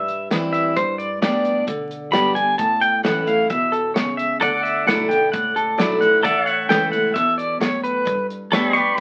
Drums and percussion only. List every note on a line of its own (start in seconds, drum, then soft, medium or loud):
0.08 closed hi-hat medium
0.31 snare loud
0.31 closed hi-hat medium
0.54 closed hi-hat medium
0.77 kick loud
0.77 closed hi-hat medium
1.00 closed hi-hat medium
1.22 snare loud
1.22 closed hi-hat medium
1.45 closed hi-hat medium
1.68 kick loud
1.68 closed hi-hat medium
1.91 closed hi-hat medium
2.13 snare loud
2.13 closed hi-hat medium
2.36 closed hi-hat medium
2.59 kick loud
2.59 closed hi-hat medium
2.82 closed hi-hat medium
3.05 snare loud
3.05 closed hi-hat medium
3.27 closed hi-hat medium
3.50 kick loud
3.50 closed hi-hat medium
3.73 closed hi-hat medium
3.96 snare loud
3.96 closed hi-hat medium
4.19 closed hi-hat medium
4.42 kick loud
4.42 closed hi-hat medium
4.65 closed hi-hat medium
4.88 snare loud
4.88 closed hi-hat medium
5.11 closed hi-hat medium
5.34 kick loud
5.34 closed hi-hat medium
5.56 closed hi-hat medium
5.80 snare loud
5.80 closed hi-hat medium
6.02 closed hi-hat medium
6.25 kick loud
6.25 closed hi-hat medium
6.47 closed hi-hat medium
6.70 snare loud
6.70 closed hi-hat medium
6.93 closed hi-hat medium
7.16 kick loud
7.16 closed hi-hat medium
7.39 closed hi-hat medium
7.61 snare loud
7.61 closed hi-hat medium
7.84 closed hi-hat medium
8.07 kick loud
8.07 closed hi-hat medium
8.30 closed hi-hat medium
8.53 snare loud
8.53 closed hi-hat medium
8.76 closed hi-hat medium